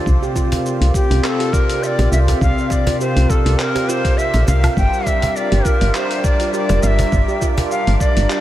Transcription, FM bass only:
0, 0, Header, 1, 2, 480
1, 0, Start_track
1, 0, Tempo, 588235
1, 52, Time_signature, 4, 2, 24, 8
1, 6858, End_track
2, 0, Start_track
2, 0, Title_t, "FM bass"
2, 0, Program_c, 0, 39
2, 52, Note_on_c, 0, 36, 102
2, 144, Note_off_c, 0, 36, 0
2, 660, Note_on_c, 0, 36, 78
2, 739, Note_off_c, 0, 36, 0
2, 902, Note_on_c, 0, 36, 101
2, 979, Note_off_c, 0, 36, 0
2, 1620, Note_on_c, 0, 34, 86
2, 1699, Note_off_c, 0, 34, 0
2, 1727, Note_on_c, 0, 36, 83
2, 1905, Note_off_c, 0, 36, 0
2, 1968, Note_on_c, 0, 36, 102
2, 2063, Note_off_c, 0, 36, 0
2, 2581, Note_on_c, 0, 36, 82
2, 2659, Note_off_c, 0, 36, 0
2, 2820, Note_on_c, 0, 36, 99
2, 2899, Note_off_c, 0, 36, 0
2, 3540, Note_on_c, 0, 34, 84
2, 3619, Note_off_c, 0, 34, 0
2, 3655, Note_on_c, 0, 36, 85
2, 3829, Note_off_c, 0, 36, 0
2, 3890, Note_on_c, 0, 31, 102
2, 3984, Note_off_c, 0, 31, 0
2, 4503, Note_on_c, 0, 31, 83
2, 4580, Note_off_c, 0, 31, 0
2, 4742, Note_on_c, 0, 31, 103
2, 4819, Note_off_c, 0, 31, 0
2, 5463, Note_on_c, 0, 29, 79
2, 5540, Note_off_c, 0, 29, 0
2, 5573, Note_on_c, 0, 31, 84
2, 5748, Note_off_c, 0, 31, 0
2, 5812, Note_on_c, 0, 31, 98
2, 5904, Note_off_c, 0, 31, 0
2, 6422, Note_on_c, 0, 31, 87
2, 6500, Note_off_c, 0, 31, 0
2, 6664, Note_on_c, 0, 31, 105
2, 6740, Note_off_c, 0, 31, 0
2, 6858, End_track
0, 0, End_of_file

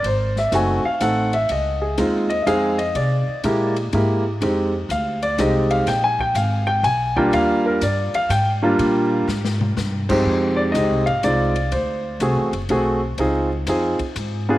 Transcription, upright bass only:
0, 0, Header, 1, 3, 480
1, 0, Start_track
1, 0, Key_signature, -3, "major"
1, 0, Tempo, 487013
1, 39, Time_signature, 3, 2, 24, 8
1, 14371, End_track
2, 0, Start_track
2, 0, Title_t, "Upright bass"
2, 0, Program_c, 0, 32
2, 25, Note_on_c, 0, 32, 75
2, 497, Note_off_c, 0, 32, 0
2, 510, Note_on_c, 0, 30, 81
2, 810, Note_off_c, 0, 30, 0
2, 991, Note_on_c, 0, 33, 76
2, 1459, Note_off_c, 0, 33, 0
2, 1475, Note_on_c, 0, 37, 71
2, 1941, Note_off_c, 0, 37, 0
2, 1949, Note_on_c, 0, 39, 76
2, 2417, Note_off_c, 0, 39, 0
2, 2428, Note_on_c, 0, 41, 78
2, 2896, Note_off_c, 0, 41, 0
2, 2907, Note_on_c, 0, 48, 75
2, 3206, Note_off_c, 0, 48, 0
2, 3387, Note_on_c, 0, 46, 77
2, 3854, Note_off_c, 0, 46, 0
2, 3872, Note_on_c, 0, 44, 75
2, 4337, Note_off_c, 0, 44, 0
2, 4343, Note_on_c, 0, 41, 74
2, 4811, Note_off_c, 0, 41, 0
2, 4819, Note_on_c, 0, 38, 81
2, 5289, Note_off_c, 0, 38, 0
2, 5299, Note_on_c, 0, 36, 74
2, 5768, Note_off_c, 0, 36, 0
2, 5781, Note_on_c, 0, 34, 77
2, 6249, Note_off_c, 0, 34, 0
2, 6256, Note_on_c, 0, 32, 89
2, 6726, Note_off_c, 0, 32, 0
2, 6733, Note_on_c, 0, 35, 77
2, 7205, Note_off_c, 0, 35, 0
2, 7217, Note_on_c, 0, 39, 83
2, 7687, Note_off_c, 0, 39, 0
2, 7702, Note_on_c, 0, 43, 80
2, 8000, Note_off_c, 0, 43, 0
2, 8173, Note_on_c, 0, 44, 85
2, 8644, Note_off_c, 0, 44, 0
2, 8660, Note_on_c, 0, 46, 82
2, 9128, Note_off_c, 0, 46, 0
2, 9140, Note_on_c, 0, 44, 82
2, 9608, Note_off_c, 0, 44, 0
2, 9626, Note_on_c, 0, 43, 85
2, 10091, Note_off_c, 0, 43, 0
2, 10103, Note_on_c, 0, 41, 75
2, 10570, Note_off_c, 0, 41, 0
2, 10584, Note_on_c, 0, 37, 77
2, 10744, Note_off_c, 0, 37, 0
2, 10744, Note_on_c, 0, 36, 50
2, 10897, Note_off_c, 0, 36, 0
2, 11067, Note_on_c, 0, 36, 73
2, 11533, Note_off_c, 0, 36, 0
2, 11546, Note_on_c, 0, 38, 74
2, 12014, Note_off_c, 0, 38, 0
2, 12024, Note_on_c, 0, 36, 83
2, 12181, Note_off_c, 0, 36, 0
2, 12181, Note_on_c, 0, 33, 50
2, 12340, Note_off_c, 0, 33, 0
2, 12346, Note_on_c, 0, 30, 58
2, 12497, Note_off_c, 0, 30, 0
2, 12505, Note_on_c, 0, 35, 76
2, 12975, Note_off_c, 0, 35, 0
2, 12985, Note_on_c, 0, 37, 71
2, 13456, Note_off_c, 0, 37, 0
2, 13468, Note_on_c, 0, 41, 79
2, 13768, Note_off_c, 0, 41, 0
2, 13952, Note_on_c, 0, 44, 77
2, 14371, Note_off_c, 0, 44, 0
2, 14371, End_track
3, 0, Start_track
3, 0, Title_t, "Muted upright bass strokes"
3, 831, Note_on_c, 9, 29, 37
3, 930, Note_off_c, 9, 29, 0
3, 3231, Note_on_c, 9, 29, 35
3, 3330, Note_off_c, 9, 29, 0
3, 8022, Note_on_c, 9, 29, 36
3, 8120, Note_off_c, 9, 29, 0
3, 13794, Note_on_c, 9, 29, 36
3, 13892, Note_off_c, 9, 29, 0
3, 14371, End_track
0, 0, End_of_file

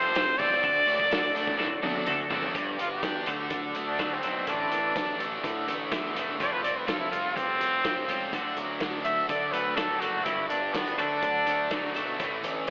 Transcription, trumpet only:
0, 0, Header, 1, 2, 480
1, 0, Start_track
1, 0, Key_signature, 2, "major"
1, 0, Tempo, 481928
1, 630, Time_signature, 4, 2, 24, 8
1, 12650, End_track
2, 0, Start_track
2, 0, Title_t, "Trumpet"
2, 0, Program_c, 0, 56
2, 0, Note_on_c, 0, 72, 106
2, 382, Note_on_c, 0, 74, 119
2, 397, Note_off_c, 0, 72, 0
2, 2057, Note_off_c, 0, 74, 0
2, 2795, Note_on_c, 0, 65, 89
2, 2899, Note_off_c, 0, 65, 0
2, 2905, Note_on_c, 0, 67, 74
2, 3250, Note_off_c, 0, 67, 0
2, 3856, Note_on_c, 0, 62, 82
2, 4126, Note_on_c, 0, 60, 82
2, 4140, Note_off_c, 0, 62, 0
2, 4470, Note_on_c, 0, 62, 99
2, 4485, Note_off_c, 0, 60, 0
2, 5394, Note_off_c, 0, 62, 0
2, 6394, Note_on_c, 0, 74, 106
2, 6495, Note_on_c, 0, 71, 87
2, 6510, Note_off_c, 0, 74, 0
2, 6601, Note_off_c, 0, 71, 0
2, 6607, Note_on_c, 0, 74, 84
2, 6739, Note_on_c, 0, 71, 66
2, 6754, Note_off_c, 0, 74, 0
2, 6840, Note_off_c, 0, 71, 0
2, 6846, Note_on_c, 0, 65, 79
2, 6959, Note_off_c, 0, 65, 0
2, 6965, Note_on_c, 0, 64, 81
2, 7077, Note_off_c, 0, 64, 0
2, 7083, Note_on_c, 0, 65, 93
2, 7327, Note_on_c, 0, 60, 114
2, 7342, Note_off_c, 0, 65, 0
2, 8264, Note_off_c, 0, 60, 0
2, 9008, Note_on_c, 0, 76, 95
2, 9247, Note_off_c, 0, 76, 0
2, 9258, Note_on_c, 0, 74, 86
2, 9483, Note_on_c, 0, 71, 79
2, 9498, Note_off_c, 0, 74, 0
2, 9720, Note_on_c, 0, 69, 86
2, 9734, Note_off_c, 0, 71, 0
2, 9964, Note_on_c, 0, 66, 80
2, 9979, Note_off_c, 0, 69, 0
2, 10201, Note_on_c, 0, 64, 81
2, 10216, Note_off_c, 0, 66, 0
2, 10441, Note_off_c, 0, 64, 0
2, 10447, Note_on_c, 0, 62, 88
2, 10695, Note_on_c, 0, 59, 79
2, 10710, Note_off_c, 0, 62, 0
2, 10935, Note_off_c, 0, 59, 0
2, 10947, Note_on_c, 0, 62, 103
2, 11883, Note_off_c, 0, 62, 0
2, 12650, End_track
0, 0, End_of_file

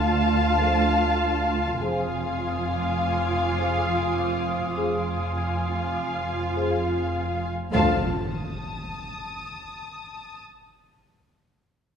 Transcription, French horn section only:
0, 0, Header, 1, 2, 480
1, 0, Start_track
1, 0, Key_signature, -1, "minor"
1, 0, Tempo, 594059
1, 1455, Time_signature, 5, 2, 24, 8
1, 9665, End_track
2, 0, Start_track
2, 0, Title_t, "French horn section"
2, 0, Program_c, 0, 60
2, 483, Note_on_c, 0, 53, 49
2, 484, Note_on_c, 0, 69, 49
2, 655, Note_off_c, 0, 53, 0
2, 655, Note_off_c, 0, 69, 0
2, 1454, Note_on_c, 0, 53, 45
2, 1459, Note_on_c, 0, 68, 43
2, 1622, Note_off_c, 0, 53, 0
2, 1625, Note_off_c, 0, 68, 0
2, 2890, Note_on_c, 0, 53, 37
2, 2895, Note_on_c, 0, 68, 34
2, 3059, Note_off_c, 0, 53, 0
2, 3063, Note_off_c, 0, 68, 0
2, 3854, Note_on_c, 0, 53, 33
2, 3854, Note_on_c, 0, 68, 35
2, 4022, Note_off_c, 0, 53, 0
2, 4022, Note_off_c, 0, 68, 0
2, 5292, Note_on_c, 0, 53, 32
2, 5295, Note_on_c, 0, 68, 30
2, 5460, Note_off_c, 0, 53, 0
2, 5463, Note_off_c, 0, 68, 0
2, 6236, Note_on_c, 0, 69, 50
2, 6237, Note_on_c, 0, 53, 45
2, 6448, Note_off_c, 0, 69, 0
2, 6449, Note_off_c, 0, 53, 0
2, 9665, End_track
0, 0, End_of_file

